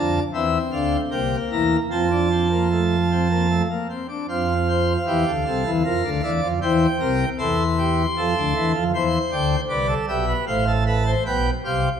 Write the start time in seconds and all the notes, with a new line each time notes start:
Already playing: F2 F3 D4 A5
0.34 E2 E3 C4 E5
0.72 D2 D3 F5
1.11 C2 C3 A#3 G5
1.52 E2 E3 A#5
1.91 F2 F3 C4 A5
2.11 D4
2.31 C4
2.51 A#3
2.71 A3
3.11 C4
3.30 A#3
3.50 A3
3.70 A#3
3.89 C4
4.09 D4
4.29 F2 F3 C4 F5
4.68 C5
5.07 E2 E3 G4
5.27 D2 D3
5.46 C2 C3 A4
5.65 E2 E3
5.84 F2 F3 A#4
6.04 D2 D3
6.23 E2 E3 D5
6.42 F2 F3
6.62 E2 E3 C5 G5
7.00 C2 C3 A#4
7.38 E2 E3 A4 C6
7.79 G4
8.17 F2 F3 A4
8.37 D2 D3
8.56 E2 E3
8.75 F2 F3
8.94 E2 E3 C5 C6
9.32 D2 D3 G5
9.70 C2 C3 B4 D5
9.88 A4
10.08 B1 B2 G4 E5
10.28 B4
10.47 A1 A2 C5 F5
10.67 A4
10.87 B4 A5
11.06 C5
11.26 B1 B2 B4 G5
11.65 C2 C3 G4 F5